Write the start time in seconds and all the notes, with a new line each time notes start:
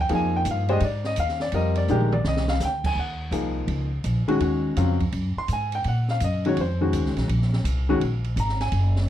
0.01 G5
0.09 F2 F3 A#3 D#4 G#4, ride
0.15 G#5
0.36 G5
0.45 G2, hi-hat pedal, ride
0.51 F5
0.69 G#3 D4 G4 C5 D#5, ride
0.80 G#2, ride
0.85 D5
1.04 D#5, snare
1.16 D#2 F5, hi-hat pedal, ride
1.29 snare
1.40 D5, snare
1.52 F2 G3 C4 F4 A#4 D#5, ride
1.75 D5, ride
1.88 A#1 D#3 G#3 D4 G4, hi-hat pedal, mid tom
1.92 A#4
2.00 mid tom
2.12 D5, mid tom
2.24 C2 D#5, snare
2.37 snare
2.48 F5, snare
2.60 D2, snare, hi-hat pedal
2.65 G5
2.84 G#5, kick, crash
2.95 D#2
2.99 F#5
3.31 C2 F3 A#3 D#4 G#4, hi-hat pedal, ride
3.68 C#2, ride
4.04 A#1, hi-hat pedal, ride
4.28 D#3 G#3 C#4 F#4, muted upright bass stroke, ride
4.40 D#2 D#3 G#3 C#4 F#4, ride
4.76 F2 C#3 F#3 C4 F4, hi-hat pedal, ride
5.00 kick, ride
5.12 F#2, ride
5.36 C6, muted upright bass stroke
5.48 G#2, hi-hat pedal, ride
5.53 G#5
5.72 G5, ride
5.84 A#2, ride
5.88 F#5
6.08 F5, snare
6.20 F#2, hi-hat pedal, ride
6.24 D#5
6.45 D#3 G#3 C#4 F#4 C#5, ride
6.57 F2, ride
6.61 C5
6.81 D#3 G#3 C#4 F#4
6.93 D#2, hi-hat pedal, ride
7.05 C#2, snare
7.16 A#1, snare, ride
7.28 A#1, ride
7.42 snare
7.53 snare
7.64 C2, hi-hat pedal, ride
7.89 D#3 G#3 C#4 F#4
8.01 A#1, ride
8.24 ride
8.36 G#1 A#5, hi-hat pedal, ride
8.49 snare
8.60 G#5, snare, ride
8.72 F#1, ride
8.96 snare